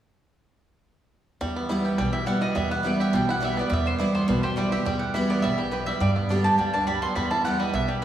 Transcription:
1.41 steel-string acoustic guitar E2, upright bass E2, five-string banjo G3
1.56 five-string banjo B3
1.69 steel-string acoustic guitar E3 G3 B3 E4, five-string banjo E4
1.85 five-string banjo G4
1.98 upright bass B1, steel-string acoustic guitar B2, five-string banjo G3, mandolin G5
2.13 five-string banjo E4, mandolin E5
2.26 steel-string acoustic guitar E3 G3 B3 E4, five-string banjo G3, mandolin F#5
2.41 five-string banjo B3, steel-string acoustic guitar B3 E4, mandolin D#5
2.55 steel-string acoustic guitar E2, upright bass E2, five-string banjo G3, mandolin E5
2.71 five-string banjo B3, mandolin F#5
2.83 steel-string acoustic guitar E3 G3 B3 E4, five-string banjo E4, mandolin D5
3.00 five-string banjo G4, mandolin E5
3.13 upright bass B1, steel-string acoustic guitar B2, five-string banjo G3, mandolin G5
3.29 five-string banjo E4, mandolin F#5
3.40 steel-string acoustic guitar E3 G3 B3 E4, five-string banjo G3
3.45 mandolin E5
3.56 five-string banjo B3, steel-string acoustic guitar B3 E4, mandolin D5
3.70 steel-string acoustic guitar E2, upright bass E2, five-string banjo G3, mandolin E5
3.86 five-string banjo B3, mandolin C5
3.98 steel-string acoustic guitar E3 G3 B3 E4, five-string banjo E4, mandolin D5
4.15 five-string banjo B3, mandolin C5
4.28 upright bass B1, steel-string acoustic guitar B2, five-string banjo G3, mandolin B4
4.43 five-string banjo G4, mandolin C5
4.56 steel-string acoustic guitar E3 G3 B3 E4, five-string banjo G3, mandolin D5
4.72 steel-string acoustic guitar B3 E4, five-string banjo G4, mandolin E5
4.85 upright bass E2, steel-string acoustic guitar E2, five-string banjo G3, mandolin G5
4.99 mandolin F#5
5.14 steel-string acoustic guitar E3 G3 B3 E4, five-string banjo E4, mandolin E5
5.30 five-string banjo B3, mandolin D5
5.42 upright bass B1, steel-string acoustic guitar E2, five-string banjo G3, mandolin E5
5.58 five-string banjo E4, mandolin G4
5.71 steel-string acoustic guitar F#2, five-string banjo G4, mandolin B4
5.86 five-string banjo G3, mandolin E5
6.00 steel-string acoustic guitar G2, upright bass G2, five-string banjo G3, mandolin D5
6.16 five-string banjo B3
6.29 steel-string acoustic guitar D3 G3 B3 G4, five-string banjo D4
6.44 five-string banjo G4, mandolin A5
6.58 upright bass D2, steel-string acoustic guitar G2, five-string banjo G3, mandolin G5
6.73 five-string banjo D4, mandolin A5
6.87 steel-string acoustic guitar F#2, five-string banjo G3, mandolin B5
7.02 five-string banjo B3, mandolin C6
7.15 upright bass E2, steel-string acoustic guitar E2, five-string banjo G3, mandolin B5
7.31 five-string banjo E4, mandolin A5
7.45 steel-string acoustic guitar E3 G3 B3 E4, five-string banjo G4, mandolin F#5
7.59 five-string banjo G3, steel-string acoustic guitar B3 E4, mandolin D#5
7.73 upright bass B1, steel-string acoustic guitar E2, five-string banjo E4, mandolin E5
7.88 five-string banjo G3, mandolin G4

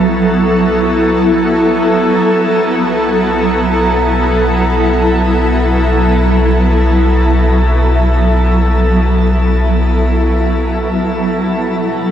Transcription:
Already playing: synth drone B1, ambient pad F#3 B3 E4 A4
2.22 synth drone B1
11.44 ambient pad B2, vibraphone F#5
11.70 ambient pad E3

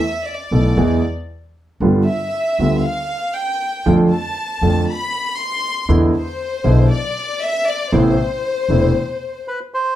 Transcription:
Already playing: violin section E5
0.26 violin section D5
0.51 upright bass B1, grand piano B1 B2 E3 A3 B3 A4
0.77 upright bass E2, grand piano E2 E3 G#3 B3 G#4
1.80 upright bass G1, grand piano G1 G2 D3 G3 B3 F4
2.06 violin section E5
2.59 upright bass D2, grand piano D2 D3 G3 B3 F4
2.84 violin section F5
3.35 violin section G5
3.86 grand piano F2 D3 F3 A3 C4 F4, upright bass F2
4.12 violin section A5
4.62 upright bass F2, grand piano F2 D3 F3 A3 C4 F4
4.88 violin section B5
5.39 violin section C6
5.89 upright bass E2, grand piano E2 D3 E3 G#3 B3 E4
6.17 violin section C5
6.64 grand piano B1 B2 D3 G#3 B3 E4, upright bass B1
6.91 violin section D5
7.42 violin section E5
7.67 violin section D5
7.92 grand piano A1 A2 C3 A3 B3 E4, upright bass A1, violin section C5
8.69 upright bass E1, grand piano E1 E2 C3 A3 B3 E4
9.48 bandoneon B4
9.74 bandoneon C5

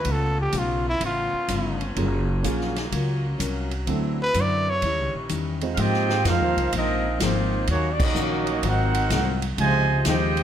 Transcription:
Already playing: trumpet B4
0.04 upright bass C#2, steel-string acoustic guitar C#3 A3 B3 F4, saxophone section A3 B3 C#4 F4, kick, ride
0.11 trumpet A4
0.41 trumpet G4
0.52 upright bass B1, steel-string acoustic guitar C#3 A3 B3 F4, kick, hi-hat pedal, ride
0.58 trumpet F4
0.89 trumpet E4
0.99 upright bass A1, steel-string acoustic guitar C#3 A3 B3 F4, kick, ride
1.05 trumpet F4
1.33 muted upright bass stroke
1.48 upright bass G1, steel-string acoustic guitar C#3 A3 B3 F4, kick, hi-hat pedal, ride
1.81 ride
1.95 upright bass F#1, steel-string acoustic guitar F#3 C#4 F4 A#4, grand piano F#3 A#3 C#4 F4 G#4, saxophone section F#3 A#3, kick, ride
2.43 upright bass A#1, grand piano F#3 A#3 C#4 F4 G#4, steel-string acoustic guitar F#3 C#4 F4 A#4, kick, hi-hat pedal, ride
2.61 snare
2.76 snare, ride
2.91 upright bass C#2, steel-string acoustic guitar F#3 C#4 F4 A#4, kick, ride
3.38 upright bass C2, steel-string acoustic guitar F#3 C#4 F4 A#4, kick, hi-hat pedal, ride
3.71 ride
3.86 upright bass D2, steel-string acoustic guitar D3 F#3 C4 E4, saxophone section D3 E3 C4, grand piano F#3 C4 D4 E4 A4, kick, ride
4.22 trumpet B4
4.34 upright bass F#2, steel-string acoustic guitar D3 F#3 C4 E4, kick, hi-hat pedal, ride
4.40 trumpet D5
4.70 trumpet C#5
4.81 upright bass D#2, saxophone section D#3 G3 C#4, steel-string acoustic guitar D#3 G3 C#4, kick, ride
4.85 steel-string acoustic guitar E4
4.99 upright bass C#2
5.14 upright bass A#1
5.29 upright bass E2, steel-string acoustic guitar D#3 G3 C#4 E4, kick, hi-hat pedal, ride
5.61 grand piano G#3 C4 D#4 F4 C5, ride
5.74 upright bass G#2, steel-string acoustic guitar G#2, trumpet section F5, kick, ride
5.78 steel-string acoustic guitar F3 A#3 C4, trombone section C4 D#4 G4, trumpet section F4 C5 D#5 G5
5.94 snare
6.09 snare
6.24 upright bass F2, steel-string acoustic guitar G#2 F3 A#3 C4, trombone section F3 C4 F4, trumpet section F5, kick, snare, hi-hat pedal, ride
6.28 trumpet section D#4 A#4 C5
6.41 upright bass D#2
6.56 upright bass C2, ride
6.72 upright bass A#1, steel-string acoustic guitar G#2 F3 A#3 C4, trombone section F3 C4 D#4, trumpet section D#5, kick, ride
6.77 trumpet section C4 F4 A#4
7.20 upright bass G#1, steel-string acoustic guitar G#2 F3 A#3 C4, trombone section D#3 F3 C4, trumpet section A#3 D#4 F4 C5, kick, snare, hi-hat pedal, ride
7.67 upright bass D#2, steel-string acoustic guitar D#3 A#3 C#4 F#4, trombone section F#3 A#3 C#4, trumpet section A#3 D#4 F#4 C#5, kick, ride
7.91 trumpet section D5
8.00 trombone section F#3 A#3 D#4, trumpet section C#4 F#4 A#4 D#5, kick, crash
8.15 upright bass A#1, steel-string acoustic guitar D#3 A#3 C#4 F#4, hi-hat pedal
8.47 ride
8.63 upright bass G#1, steel-string acoustic guitar G#2 F#3 C4 F4, trombone section C4 D#4 F#4, kick, ride
8.67 trumpet section D#4 A#4 C5 F#5
8.95 ride
9.10 upright bass C2, steel-string acoustic guitar G#2 F#3 C4 F4, kick, snare, hi-hat pedal, ride
9.42 ride
9.57 upright bass C#2, trombone section C3 F3 G#3, steel-string acoustic guitar C#3 F3 C4 D#4, trumpet section F4 C5 D#5 G#5, kick, ride
10.05 upright bass D#2, steel-string acoustic guitar C#3 F3 C4 D#4, trombone section G#3 C4 G4, trumpet section F4 C5 D#5 G5, kick, snare, hi-hat pedal, ride
10.37 ride

